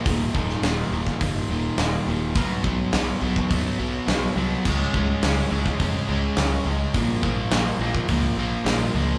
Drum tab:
CC |----------------|----------------|x---------------|----------------|
HH |o---o---o---o---|o---o---o---o---|----o---o---o---|o---o---o---o---|
SD |---oo--o----o---|----o-------o---|----o--o----o---|----o-------o---|
BD |o-o----oo-------|o-o----oo-------|o-o----oo-------|o-o----oo-------|